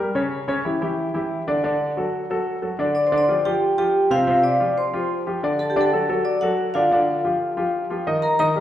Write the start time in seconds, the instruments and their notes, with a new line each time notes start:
0.00 grand piano G3 G4 A#4
0.15 grand piano C#3 C#4 C#5
0.48 grand piano C#3 C#4 C#5
0.65 grand piano E3 E4 G4
0.81 grand piano E3 E4 G4
1.14 grand piano E3 E4 G4
1.48 grand piano D3 D4 D5
1.64 grand piano D3 D4 D5
1.97 grand piano F#3 F#4 A4
2.30 grand piano F#3 F#4 A4
2.62 grand piano F#3 F#4 A4
2.79 grand piano D3 D4 D5
2.95 vibraphone D5 D6
3.07 vibraphone C5 C6
3.12 grand piano D3 D4 D5
3.18 vibraphone D5 D6
3.28 grand piano F3 F4 G4
3.45 grand piano F3 F4 G4, vibraphone G4 G5
3.78 grand piano F3 F4 G4, vibraphone G4 G5
4.10 grand piano C3 C4 C5, vibraphone F4 F5
4.27 grand piano C3 C4 C5
4.43 vibraphone D5 D6
4.60 grand piano F3 F4 G4
4.78 vibraphone C5 C6
4.93 grand piano F3 F4 G4
5.26 grand piano F3 F4 G4
5.43 grand piano D3 D4 D5
5.59 vibraphone A4 A5
5.70 vibraphone G4 G5
5.76 grand piano D3 D4 D5
5.81 vibraphone A4 A5
5.93 grand piano F#3 F#4 A4
6.09 grand piano F#3 F#4 A4
6.25 vibraphone D5 D6
6.41 grand piano F#3 F#4 A4, vibraphone F#4 F#5
6.74 grand piano D3 D4 D5, vibraphone F4 F5
6.91 grand piano D3 D4 D5
7.24 grand piano F3 F4 G4
7.57 grand piano F3 F4 G4
7.90 grand piano F3 F4 G4
8.06 grand piano D#3 D#4 D#5
8.22 vibraphone A#4 A#5
8.39 grand piano D#3 D#4 D#5, vibraphone A#4 A#5
8.56 grand piano G3 G4 A#4